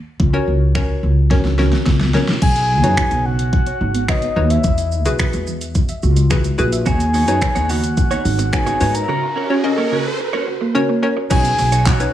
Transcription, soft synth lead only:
2.42 G#5
3.25 F#5
4.09 D#5
4.50 E5
6.86 G#5
7.69 F#5
8.53 G#5
8.94 A#5
11.31 G#5
11.86 F#5

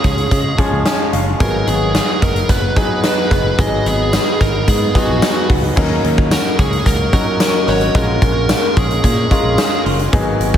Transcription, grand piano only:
Already playing: F3 G#3 C#4 D#4 F#4 G#4
0.58 F3 G#3 C#4 G#4
0.86 G#5
1.13 F5
1.40 F#3 B3 D#4 G#4
2.76 F#3 B3 D#4 G#4
3.58 F#3 B3 D#4 G#4
4.94 F#3 B3 D#4 G#4
5.76 F#3 C#4 D#4 A#4
7.12 F#3 C#4 D#4 A#4
7.95 G#3 C#4 F4 A#4
9.31 G#3 C#4 F4 A#4
10.12 F#3 B3 D#4 G#4

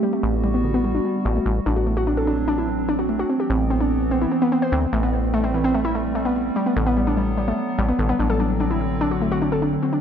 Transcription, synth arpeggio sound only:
0.03 G3
0.13 A3
0.44 G3
0.54 B3
0.64 D3
0.74 B3
0.85 G3
0.95 D4
1.05 G3
1.25 G3
1.36 A3
1.66 D4
1.76 F#4
1.87 A3
1.97 F#4
2.07 D4
2.17 A4
2.27 D4
2.48 D4
2.58 E4
2.89 D4
2.99 F#4
3.09 A3
3.19 F#4
3.30 C4
3.40 G4
3.50 C4
3.70 C4
3.81 D4
4.11 C4
4.22 E4
4.32 C4
4.42 B3
4.52 C4
4.62 C5
4.72 C4
4.93 A3
5.03 B3
5.34 A3
5.44 C4
5.54 E3
5.64 C4
5.75 A3
5.85 E4
5.95 A3
6.15 A3
6.25 B3
6.56 G3
6.66 B3
6.76 D3
6.86 B3
6.97 G3
7.07 D4
7.17 G3
7.38 G3
7.48 A3
7.78 G3
7.89 B3
7.99 D3
8.09 B3
8.19 D4
8.30 A4
8.40 D4
8.60 D4
8.70 E4
9.01 D4
9.11 F#4
9.21 A3
9.32 F#4
9.42 D4
9.52 A4
9.62 D4
9.83 C4
9.93 D4

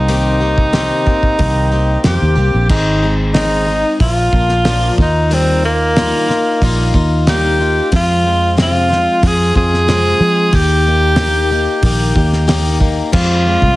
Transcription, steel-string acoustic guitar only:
0.08 C3 D#3 A#3 C4 G4
0.40 A#3 C4 G4
0.73 C3 D#3 A#3 C4 G4
1.06 A#3 C4 G4
1.38 D#3 A#3 C4 G4
1.72 A#3 C4 G4
2.04 C3 D#3 A#3 C4 G4
2.35 A#3 C4 G4
2.70 G#2 D#3 G#3 C4 D#4 G#4
3.02 G#3 C4 D#4 G#4
3.35 G#2 D#3 G#3 C4 D#4 G#4
3.67 G#3 C4 D#4 G#4
4.01 F3 A#3 D4 F4
4.33 A#3 D4 F4
4.65 A#2 F3 A#3 D4 F4
4.99 A#3 D#4 F4
5.30 D#3 G3 A#3 D#4 F4
5.64 A#3 F4
5.97 D#3 G3 A#3 D#4 F4
6.28 A#3 D#4 F4
6.62 G3 A#3 D#4 F4
6.94 A#3 D#4 F4
7.28 D#3 G3 A#3 D#4 F4
7.60 A#3 D#4 F4
7.92 F2 C3 F3 G#3 C4 F4
8.24 F3 G#3 C4 F4
8.57 F2 C3 F3 G#3 C4 F4
8.89 F3 G#3 C4 F4
9.23 F3 G#3 C4 F4
9.55 F3 G#3 C4 F4
9.87 F2 C3 F3 G#3 C4 F4
10.21 F3 G#3 C4 F4
10.53 D#3 A#3 D#4 G4
10.86 A#3 D#4 G4
11.19 D#3 A#3 D#4 G4
11.51 A#3 D#4 G4
11.84 D#3 A#3 D#4 G4
12.16 A#3 D#4 G4
12.47 D#3 A#3 D#4 G4
12.80 A#3 D#4 G4
13.12 F2 C3 F3 G#3 C4 F4
13.46 F3 G#3 C4 F4

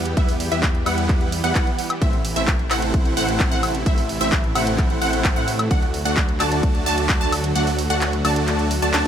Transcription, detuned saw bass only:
Already playing: E2
0.52 E2
0.86 E2
1.44 E2
2.02 A1
2.36 A1
2.71 A1
3.17 A1
3.52 A1
3.86 A1
4.21 A1
4.55 A1
5.02 A1
5.36 A2
5.71 D2
6.05 D2
6.40 D2
6.86 D2
7.21 D2
7.55 D2
7.90 D2
8.25 D2
8.82 D2
8.94 D2

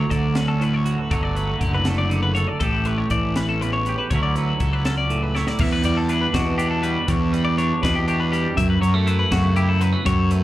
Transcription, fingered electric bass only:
0.11 D2
1.11 G1
1.61 F#1
2.60 A1
3.11 A1
4.11 D2
4.60 C#2
5.59 E2
5.84 E2
6.34 E2
7.09 E2
7.83 E2
8.57 F#2
8.82 F#2
9.31 F#2
10.05 F#2

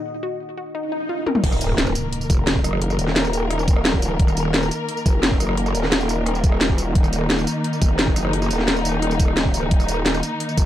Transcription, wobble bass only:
1.44 D#1
2.30 F1
2.64 F#1
2.99 D#1
3.83 D1
4.07 C#1
4.20 D#1
5.06 F1
5.40 F#1
5.75 D#1
6.95 D#1
7.82 F1
8.16 F#1
8.51 D#1
9.35 D1
9.59 C#1
9.71 D#1
10.57 F1

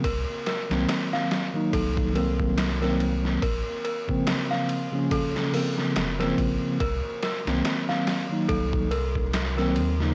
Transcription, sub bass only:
0.04 C2
0.70 C2
1.73 C2
3.42 A#1
5.96 F1
6.38 A#1
6.80 C2
7.47 C2
8.49 C2
9.76 D#2

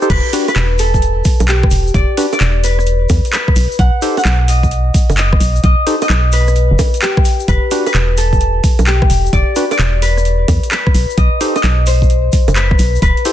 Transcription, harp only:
0.10 B4
0.48 B4
0.79 A4
1.48 G4
1.95 D5
2.33 D5
2.64 B4
3.33 B4
3.79 F#5
4.18 F#5
4.49 D#5
5.18 D#5
5.64 D#5
6.02 D#5
6.33 B4
7.02 G4
7.48 B4
7.87 B4
8.18 A4
8.87 G4
9.33 D5
9.71 D5
10.02 B4
10.72 B4
11.17 D#5
11.56 D#5
11.87 C5
12.56 B4
13.02 B4

